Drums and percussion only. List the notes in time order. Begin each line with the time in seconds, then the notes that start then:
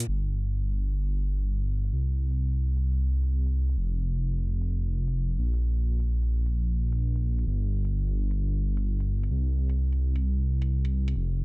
0.00 closed hi-hat, cabasa
0.08 crash
0.46 closed hi-hat
0.69 closed hi-hat
0.92 closed hi-hat
1.39 closed hi-hat
1.62 closed hi-hat
1.85 closed hi-hat
2.31 closed hi-hat
2.54 closed hi-hat
2.77 closed hi-hat
3.23 closed hi-hat
3.46 closed hi-hat
3.69 closed hi-hat
4.16 closed hi-hat
4.38 closed hi-hat
4.61 closed hi-hat
5.08 closed hi-hat
5.31 closed hi-hat
5.54 closed hi-hat
6.00 closed hi-hat
6.23 closed hi-hat
6.46 closed hi-hat
6.92 closed hi-hat
7.16 closed hi-hat
7.39 closed hi-hat
7.85 closed hi-hat
8.08 closed hi-hat
8.31 closed hi-hat
8.77 closed hi-hat
9.00 closed hi-hat
9.23 closed hi-hat
9.69 closed hi-hat
9.93 closed hi-hat
10.16 closed hi-hat
10.62 closed hi-hat
10.85 closed hi-hat
11.08 closed hi-hat